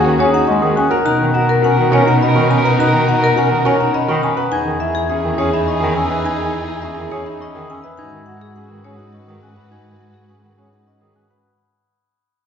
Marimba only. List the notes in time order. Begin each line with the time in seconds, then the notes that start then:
0.20 C#5
0.34 F#5
0.47 D#5
0.77 G#5
0.91 F#5
1.06 A#5
1.35 F#5
1.49 A#4
1.64 F#5
1.93 C#5
2.08 F#5
2.23 D#5
2.51 A#5
2.65 F#5
2.80 A#5
3.08 F#5
3.24 A#4
3.38 F#5
3.66 C#5
3.81 F#5
3.94 D#5
4.23 A#5
4.37 F#5
4.52 G#5
4.80 E5
4.95 G#4
5.10 E5
5.38 C#5
5.54 E5
5.68 D#5
5.97 G#5
6.11 E5
6.26 G#5
6.54 E5
6.68 G#4
6.82 E5
7.12 C#5
7.26 E5
7.42 D#5
7.70 G#5
7.84 E5
7.98 G#5
8.26 F#5
8.42 G#4
8.56 F#5
8.84 C#5
8.99 F#5
9.13 D#5
9.43 G#5
9.56 F#5
9.72 G#5
10.01 F#5
10.14 G#4
10.29 F#5
10.59 C#5
10.73 F#5
10.87 D#5
11.16 G#5
11.31 F#5